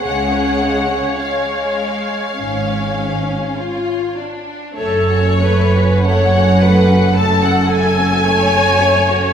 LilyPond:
<<
  \new Staff \with { instrumentName = "Violin section" } { \time 4/4 \key fis \minor \tempo 4 = 51 fis''4 eis''2~ eis''8 r8 | cis''4 fis''4 a''16 fis''16 gis''4. | }
  \new Staff \with { instrumentName = "Viola section" } { \time 4/4 \key fis \minor cis''2.~ cis''8 r8 | a'8 b'8 cis''8 b'8 a'4 cis''4 | }
  \new Staff \with { instrumentName = "Violin section" } { \time 4/4 \key fis \minor << { gis'4 gis4 cis'4 eis'8 d'8 | a'16 fis'16 a'16 fis'16 a'16 fis'16 a'16 fis'16 a'16 fis'16 a'16 fis'16 a'16 fis'16 a'16 fis'16 | } \\ { gis16 cis'16 gis16 cis'16 r2. | a16 cis'16 a16 cis'16 a16 cis'16 a16 cis'16 a16 cis'16 a16 cis'16 a16 cis'16 a16 cis'16 | } >> }
  \new Staff \with { instrumentName = "Cello section" } { \clef bass \time 4/4 \key fis \minor cis4 r4 gis,4 r4 | fis,1 | }
  \new Staff \with { instrumentName = "Double bass section" } { \clef bass \time 4/4 \key fis \minor cis,4 r4 gis,,4 r4 | fis,,1 | }
>>